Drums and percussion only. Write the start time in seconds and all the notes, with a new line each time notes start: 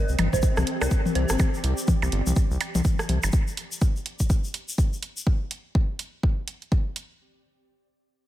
0.09 shaker
0.19 open hi-hat, high tom, percussion blips
0.33 kick, shaker
0.42 kick, shaker
0.57 cross-stick, high tom, shaker
0.67 open hi-hat
0.81 cross-stick, percussion blips, shaker
0.91 kick, open hi-hat, shaker
1.06 high tom, shaker
1.15 open hi-hat
1.29 cross-stick, shaker
1.39 kick, high tom, percussion blips, shaker
1.54 shaker
1.64 open hi-hat
1.78 shaker
1.88 kick, high tom, shaker
2.02 percussion blips, shaker
2.12 open hi-hat
2.27 high tom, shaker
2.36 kick, shaker
2.51 shaker
2.61 open hi-hat, percussion blips
2.75 open hi-hat, high tom, shaker
2.84 kick, open hi-hat, shaker
2.99 cross-stick, shaker
3.09 open hi-hat, high tom
3.23 percussion blips, shaker
3.32 kick, shaker
3.48 shaker
3.57 open hi-hat
3.72 shaker
3.81 kick, shaker
3.96 shaker
4.06 open hi-hat
4.19 kick, shaker
4.30 kick, shaker
4.44 shaker
4.54 open hi-hat
4.69 shaker
4.78 kick, open hi-hat, shaker
4.93 shaker
5.03 open hi-hat
5.17 shaker
5.27 kick
5.51 open hi-hat
5.75 kick
5.99 open hi-hat
6.23 kick
6.48 open hi-hat
6.62 open hi-hat
6.72 kick, open hi-hat
6.96 open hi-hat